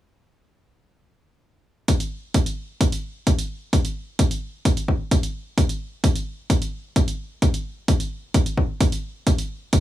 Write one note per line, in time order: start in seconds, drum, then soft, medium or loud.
1.88 kick loud
1.88 closed hi-hat medium
2.00 closed hi-hat medium
2.34 kick loud
2.34 closed hi-hat medium
2.46 closed hi-hat soft
2.81 kick loud
2.81 closed hi-hat medium
2.92 closed hi-hat medium
3.27 kick loud
3.27 closed hi-hat medium
3.39 closed hi-hat medium
3.73 kick loud
3.73 closed hi-hat medium
3.85 closed hi-hat medium
4.19 kick loud
4.19 closed hi-hat medium
4.31 closed hi-hat soft
4.65 kick loud
4.65 closed hi-hat medium
4.77 closed hi-hat medium
4.88 kick medium
5.11 kick loud
5.11 closed hi-hat medium
5.23 closed hi-hat medium
5.58 kick loud
5.58 closed hi-hat medium
5.69 closed hi-hat soft
6.04 kick loud
6.04 closed hi-hat medium
6.16 closed hi-hat soft
6.50 kick loud
6.50 closed hi-hat medium
6.62 closed hi-hat soft
6.96 kick loud
6.96 closed hi-hat medium
7.08 closed hi-hat soft
7.42 kick loud
7.42 closed hi-hat medium
7.54 closed hi-hat soft
7.88 kick loud
7.88 closed hi-hat medium
8.00 closed hi-hat soft
8.34 kick loud
8.34 closed hi-hat medium
8.46 closed hi-hat soft
8.58 kick medium
8.81 kick loud
8.81 closed hi-hat medium
8.92 closed hi-hat soft
9.27 kick loud
9.27 closed hi-hat medium
9.38 closed hi-hat soft
9.73 kick loud
9.73 closed hi-hat medium